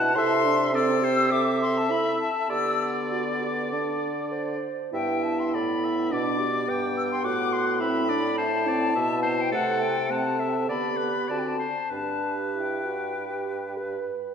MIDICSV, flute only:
0, 0, Header, 1, 2, 480
1, 0, Start_track
1, 0, Key_signature, 1, "major"
1, 0, Tempo, 575264
1, 140, Time_signature, 4, 2, 24, 8
1, 1582, Tempo, 606061
1, 4462, Tempo, 571973
1, 8782, Tempo, 620476
1, 11617, End_track
2, 0, Start_track
2, 0, Title_t, "Flute"
2, 0, Program_c, 0, 73
2, 0, Note_on_c, 0, 81, 98
2, 123, Note_on_c, 0, 84, 118
2, 136, Note_off_c, 0, 81, 0
2, 609, Note_off_c, 0, 84, 0
2, 624, Note_on_c, 0, 88, 103
2, 1096, Note_on_c, 0, 86, 98
2, 1109, Note_off_c, 0, 88, 0
2, 1338, Note_off_c, 0, 86, 0
2, 1347, Note_on_c, 0, 84, 87
2, 1478, Note_on_c, 0, 81, 79
2, 1491, Note_off_c, 0, 84, 0
2, 1587, Note_on_c, 0, 83, 84
2, 1599, Note_off_c, 0, 81, 0
2, 1816, Note_off_c, 0, 83, 0
2, 1820, Note_on_c, 0, 81, 78
2, 2058, Note_on_c, 0, 88, 94
2, 2070, Note_off_c, 0, 81, 0
2, 2372, Note_off_c, 0, 88, 0
2, 2540, Note_on_c, 0, 86, 62
2, 3473, Note_off_c, 0, 86, 0
2, 3985, Note_on_c, 0, 79, 71
2, 4222, Note_on_c, 0, 81, 65
2, 4234, Note_off_c, 0, 79, 0
2, 4350, Note_on_c, 0, 84, 65
2, 4362, Note_off_c, 0, 81, 0
2, 4464, Note_on_c, 0, 83, 68
2, 4476, Note_off_c, 0, 84, 0
2, 4951, Note_off_c, 0, 83, 0
2, 4957, Note_on_c, 0, 86, 81
2, 5651, Note_off_c, 0, 86, 0
2, 5664, Note_on_c, 0, 88, 80
2, 5715, Note_off_c, 0, 88, 0
2, 5788, Note_on_c, 0, 84, 79
2, 5896, Note_on_c, 0, 86, 94
2, 5909, Note_off_c, 0, 84, 0
2, 6132, Note_on_c, 0, 84, 82
2, 6145, Note_off_c, 0, 86, 0
2, 6361, Note_on_c, 0, 83, 85
2, 6374, Note_off_c, 0, 84, 0
2, 6845, Note_on_c, 0, 81, 93
2, 6858, Note_off_c, 0, 83, 0
2, 7709, Note_on_c, 0, 79, 80
2, 7721, Note_off_c, 0, 81, 0
2, 7813, Note_off_c, 0, 79, 0
2, 7818, Note_on_c, 0, 78, 89
2, 8053, Note_on_c, 0, 79, 75
2, 8066, Note_off_c, 0, 78, 0
2, 8309, Note_on_c, 0, 81, 80
2, 8321, Note_off_c, 0, 79, 0
2, 8797, Note_on_c, 0, 83, 73
2, 8809, Note_off_c, 0, 81, 0
2, 9263, Note_on_c, 0, 81, 61
2, 9275, Note_off_c, 0, 83, 0
2, 9326, Note_on_c, 0, 79, 49
2, 9338, Note_off_c, 0, 81, 0
2, 9384, Note_on_c, 0, 81, 60
2, 9396, Note_off_c, 0, 79, 0
2, 9744, Note_off_c, 0, 81, 0
2, 9758, Note_on_c, 0, 81, 65
2, 10060, Note_off_c, 0, 81, 0
2, 10247, Note_on_c, 0, 79, 43
2, 11160, Note_off_c, 0, 79, 0
2, 11617, End_track
0, 0, End_of_file